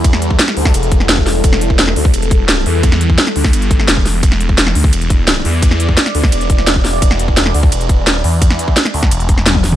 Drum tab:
RD |b---b---b---b---|b---b---b---b---|b---b---b---b---|b---b---b---b---|
HH |x-x-xxo-xxx-x-o-|x-x-x-o-xxx-x-o-|x-x-xxo-xxx-x-o-|x-x-x-o-xxx-x-o-|
SD |-o--oo-o---oo-o-|-o--oo------o---|-o--oo-o---oo-o-|-o--oo------o---|
T1 |----------------|----------------|----------------|----------------|
T2 |----------------|----------------|----------------|----------------|
BD |o--o---o--o--o--|o--o---o--o-----|o--o---o--o--o--|o--o---o--o-----|

RD |b---b---b---b---|b---b---b---b---|b---b---b---b---|
HH |x-x-xxo-xxx-x-o-|x-x-x-o-xxx-x-o-|x-x-xxoxxxx-x-o-|
SD |-o--oo-o---oo-o-|-o--oo------o---|-o--oo-o---oo-o-|
T1 |----------------|----------------|------------oo--|
T2 |----------------|----------------|---------------o|
BD |o--o---o--o--o--|o--o---o--o-----|o--o---o--o--o--|